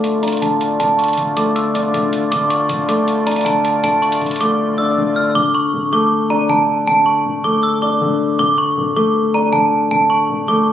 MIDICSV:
0, 0, Header, 1, 5, 480
1, 0, Start_track
1, 0, Key_signature, -1, "minor"
1, 0, Tempo, 379747
1, 1010, Time_signature, 4, 2, 24, 8
1, 13558, End_track
2, 0, Start_track
2, 0, Title_t, "Synth bell"
2, 0, Program_c, 0, 98
2, 286, Note_on_c, 0, 82, 79
2, 514, Note_off_c, 0, 82, 0
2, 528, Note_on_c, 0, 81, 76
2, 980, Note_off_c, 0, 81, 0
2, 1009, Note_on_c, 0, 81, 107
2, 1236, Note_off_c, 0, 81, 0
2, 1242, Note_on_c, 0, 85, 71
2, 1696, Note_off_c, 0, 85, 0
2, 1727, Note_on_c, 0, 86, 86
2, 1955, Note_off_c, 0, 86, 0
2, 1967, Note_on_c, 0, 88, 81
2, 2195, Note_off_c, 0, 88, 0
2, 2203, Note_on_c, 0, 86, 72
2, 2883, Note_off_c, 0, 86, 0
2, 2926, Note_on_c, 0, 86, 99
2, 3154, Note_off_c, 0, 86, 0
2, 3165, Note_on_c, 0, 85, 82
2, 3618, Note_off_c, 0, 85, 0
2, 3650, Note_on_c, 0, 86, 73
2, 3876, Note_off_c, 0, 86, 0
2, 4127, Note_on_c, 0, 82, 76
2, 4355, Note_off_c, 0, 82, 0
2, 4360, Note_on_c, 0, 81, 81
2, 4816, Note_off_c, 0, 81, 0
2, 4850, Note_on_c, 0, 81, 103
2, 5076, Note_off_c, 0, 81, 0
2, 5083, Note_on_c, 0, 85, 83
2, 5537, Note_off_c, 0, 85, 0
2, 5569, Note_on_c, 0, 86, 80
2, 6021, Note_off_c, 0, 86, 0
2, 6041, Note_on_c, 0, 88, 82
2, 6496, Note_off_c, 0, 88, 0
2, 6523, Note_on_c, 0, 89, 83
2, 6753, Note_off_c, 0, 89, 0
2, 6766, Note_on_c, 0, 86, 114
2, 6994, Note_off_c, 0, 86, 0
2, 7010, Note_on_c, 0, 85, 83
2, 7461, Note_off_c, 0, 85, 0
2, 7492, Note_on_c, 0, 86, 86
2, 7718, Note_off_c, 0, 86, 0
2, 7966, Note_on_c, 0, 82, 84
2, 8194, Note_off_c, 0, 82, 0
2, 8210, Note_on_c, 0, 81, 82
2, 8661, Note_off_c, 0, 81, 0
2, 8690, Note_on_c, 0, 81, 114
2, 8916, Note_off_c, 0, 81, 0
2, 8921, Note_on_c, 0, 85, 76
2, 9376, Note_off_c, 0, 85, 0
2, 9408, Note_on_c, 0, 86, 89
2, 9635, Note_off_c, 0, 86, 0
2, 9645, Note_on_c, 0, 88, 86
2, 9874, Note_off_c, 0, 88, 0
2, 9886, Note_on_c, 0, 86, 77
2, 10564, Note_off_c, 0, 86, 0
2, 10608, Note_on_c, 0, 86, 108
2, 10835, Note_off_c, 0, 86, 0
2, 10846, Note_on_c, 0, 85, 87
2, 11299, Note_off_c, 0, 85, 0
2, 11332, Note_on_c, 0, 86, 77
2, 11557, Note_off_c, 0, 86, 0
2, 11810, Note_on_c, 0, 82, 80
2, 12036, Note_off_c, 0, 82, 0
2, 12041, Note_on_c, 0, 81, 89
2, 12496, Note_off_c, 0, 81, 0
2, 12530, Note_on_c, 0, 81, 105
2, 12756, Note_off_c, 0, 81, 0
2, 12765, Note_on_c, 0, 85, 86
2, 13218, Note_off_c, 0, 85, 0
2, 13250, Note_on_c, 0, 86, 86
2, 13558, Note_off_c, 0, 86, 0
2, 13558, End_track
3, 0, Start_track
3, 0, Title_t, "Accordion"
3, 0, Program_c, 1, 21
3, 0, Note_on_c, 1, 50, 79
3, 0, Note_on_c, 1, 57, 69
3, 0, Note_on_c, 1, 65, 70
3, 0, Note_on_c, 1, 74, 85
3, 2891, Note_off_c, 1, 50, 0
3, 2930, Note_on_c, 1, 50, 78
3, 6719, Note_off_c, 1, 57, 0
3, 6719, Note_off_c, 1, 65, 0
3, 6719, Note_off_c, 1, 74, 0
3, 6731, Note_off_c, 1, 50, 0
3, 13558, End_track
4, 0, Start_track
4, 0, Title_t, "Grand piano"
4, 0, Program_c, 2, 0
4, 0, Control_c, 2, 64, 127
4, 0, Note_on_c, 2, 50, 70
4, 0, Note_on_c, 2, 57, 94
4, 291, Note_on_c, 2, 62, 82
4, 512, Note_off_c, 2, 50, 0
4, 531, Note_on_c, 2, 50, 83
4, 992, Note_off_c, 2, 50, 0
4, 1009, Note_off_c, 2, 57, 0
4, 1011, Note_on_c, 2, 50, 83
4, 1470, Note_off_c, 2, 50, 0
4, 1489, Note_on_c, 2, 50, 66
4, 1490, Note_off_c, 2, 62, 0
4, 1729, Note_on_c, 2, 57, 84
4, 2210, Note_on_c, 2, 62, 76
4, 2430, Note_off_c, 2, 50, 0
4, 2449, Note_on_c, 2, 50, 83
4, 2912, Note_off_c, 2, 50, 0
4, 2929, Note_off_c, 2, 57, 0
4, 2930, Note_off_c, 2, 62, 0
4, 2931, Note_on_c, 2, 50, 84
4, 2948, Control_c, 2, 64, 0
4, 3148, Control_c, 2, 64, 127
4, 3389, Note_off_c, 2, 50, 0
4, 3408, Note_on_c, 2, 50, 71
4, 3648, Note_on_c, 2, 57, 91
4, 4129, Note_on_c, 2, 62, 78
4, 4349, Note_off_c, 2, 50, 0
4, 4368, Note_on_c, 2, 50, 80
4, 4828, Note_off_c, 2, 50, 0
4, 4847, Note_on_c, 2, 50, 88
4, 4849, Note_off_c, 2, 57, 0
4, 5308, Note_off_c, 2, 50, 0
4, 5327, Note_on_c, 2, 50, 70
4, 5329, Note_off_c, 2, 62, 0
4, 5568, Note_on_c, 2, 57, 95
4, 6049, Note_on_c, 2, 62, 80
4, 6270, Note_off_c, 2, 50, 0
4, 6289, Note_on_c, 2, 50, 91
4, 6749, Note_off_c, 2, 50, 0
4, 6768, Note_on_c, 2, 50, 90
4, 6769, Note_off_c, 2, 57, 0
4, 6769, Note_off_c, 2, 62, 0
4, 6787, Control_c, 2, 64, 0
4, 6983, Control_c, 2, 64, 127
4, 7231, Note_off_c, 2, 50, 0
4, 7250, Note_on_c, 2, 50, 75
4, 7489, Note_on_c, 2, 57, 103
4, 7969, Note_on_c, 2, 62, 87
4, 8190, Note_off_c, 2, 50, 0
4, 8209, Note_on_c, 2, 50, 89
4, 8671, Note_off_c, 2, 50, 0
4, 8689, Note_off_c, 2, 57, 0
4, 8690, Note_on_c, 2, 50, 91
4, 9151, Note_off_c, 2, 50, 0
4, 9169, Note_off_c, 2, 62, 0
4, 9170, Note_on_c, 2, 50, 71
4, 9410, Note_on_c, 2, 57, 92
4, 9891, Note_on_c, 2, 62, 82
4, 10111, Note_off_c, 2, 50, 0
4, 10130, Note_on_c, 2, 50, 90
4, 10591, Note_off_c, 2, 50, 0
4, 10610, Note_off_c, 2, 57, 0
4, 10610, Note_off_c, 2, 62, 0
4, 10610, Note_on_c, 2, 50, 91
4, 10624, Control_c, 2, 64, 0
4, 10879, Control_c, 2, 64, 127
4, 11071, Note_off_c, 2, 50, 0
4, 11090, Note_on_c, 2, 50, 79
4, 11330, Note_on_c, 2, 57, 98
4, 11811, Note_on_c, 2, 62, 84
4, 12031, Note_off_c, 2, 50, 0
4, 12050, Note_on_c, 2, 50, 88
4, 12512, Note_off_c, 2, 50, 0
4, 12530, Note_off_c, 2, 57, 0
4, 12531, Note_on_c, 2, 50, 93
4, 12992, Note_off_c, 2, 50, 0
4, 13010, Note_off_c, 2, 62, 0
4, 13011, Note_on_c, 2, 50, 75
4, 13252, Note_on_c, 2, 57, 96
4, 13558, Note_off_c, 2, 50, 0
4, 13558, Note_off_c, 2, 57, 0
4, 13558, End_track
5, 0, Start_track
5, 0, Title_t, "Drums"
5, 49, Note_on_c, 9, 42, 79
5, 176, Note_off_c, 9, 42, 0
5, 289, Note_on_c, 9, 42, 65
5, 349, Note_off_c, 9, 42, 0
5, 349, Note_on_c, 9, 42, 64
5, 409, Note_off_c, 9, 42, 0
5, 409, Note_on_c, 9, 42, 63
5, 470, Note_off_c, 9, 42, 0
5, 470, Note_on_c, 9, 42, 63
5, 534, Note_off_c, 9, 42, 0
5, 534, Note_on_c, 9, 42, 84
5, 660, Note_off_c, 9, 42, 0
5, 769, Note_on_c, 9, 42, 85
5, 896, Note_off_c, 9, 42, 0
5, 1009, Note_on_c, 9, 42, 86
5, 1136, Note_off_c, 9, 42, 0
5, 1249, Note_on_c, 9, 42, 57
5, 1310, Note_off_c, 9, 42, 0
5, 1310, Note_on_c, 9, 42, 58
5, 1370, Note_off_c, 9, 42, 0
5, 1370, Note_on_c, 9, 42, 57
5, 1430, Note_off_c, 9, 42, 0
5, 1430, Note_on_c, 9, 42, 60
5, 1485, Note_off_c, 9, 42, 0
5, 1485, Note_on_c, 9, 42, 70
5, 1611, Note_off_c, 9, 42, 0
5, 1728, Note_on_c, 9, 42, 85
5, 1855, Note_off_c, 9, 42, 0
5, 1970, Note_on_c, 9, 42, 78
5, 2097, Note_off_c, 9, 42, 0
5, 2212, Note_on_c, 9, 42, 82
5, 2338, Note_off_c, 9, 42, 0
5, 2454, Note_on_c, 9, 42, 84
5, 2581, Note_off_c, 9, 42, 0
5, 2690, Note_on_c, 9, 42, 81
5, 2816, Note_off_c, 9, 42, 0
5, 2931, Note_on_c, 9, 42, 87
5, 3057, Note_off_c, 9, 42, 0
5, 3164, Note_on_c, 9, 42, 71
5, 3290, Note_off_c, 9, 42, 0
5, 3405, Note_on_c, 9, 42, 68
5, 3531, Note_off_c, 9, 42, 0
5, 3649, Note_on_c, 9, 42, 86
5, 3775, Note_off_c, 9, 42, 0
5, 3890, Note_on_c, 9, 42, 78
5, 4016, Note_off_c, 9, 42, 0
5, 4130, Note_on_c, 9, 42, 66
5, 4189, Note_off_c, 9, 42, 0
5, 4189, Note_on_c, 9, 42, 65
5, 4249, Note_off_c, 9, 42, 0
5, 4249, Note_on_c, 9, 42, 64
5, 4309, Note_off_c, 9, 42, 0
5, 4309, Note_on_c, 9, 42, 66
5, 4374, Note_off_c, 9, 42, 0
5, 4374, Note_on_c, 9, 42, 84
5, 4500, Note_off_c, 9, 42, 0
5, 4609, Note_on_c, 9, 42, 87
5, 4735, Note_off_c, 9, 42, 0
5, 4850, Note_on_c, 9, 42, 85
5, 4976, Note_off_c, 9, 42, 0
5, 5090, Note_on_c, 9, 42, 42
5, 5209, Note_off_c, 9, 42, 0
5, 5209, Note_on_c, 9, 42, 72
5, 5330, Note_off_c, 9, 42, 0
5, 5330, Note_on_c, 9, 42, 43
5, 5389, Note_off_c, 9, 42, 0
5, 5389, Note_on_c, 9, 42, 51
5, 5448, Note_off_c, 9, 42, 0
5, 5448, Note_on_c, 9, 42, 62
5, 5508, Note_off_c, 9, 42, 0
5, 5508, Note_on_c, 9, 42, 71
5, 5568, Note_off_c, 9, 42, 0
5, 5568, Note_on_c, 9, 42, 84
5, 5694, Note_off_c, 9, 42, 0
5, 13558, End_track
0, 0, End_of_file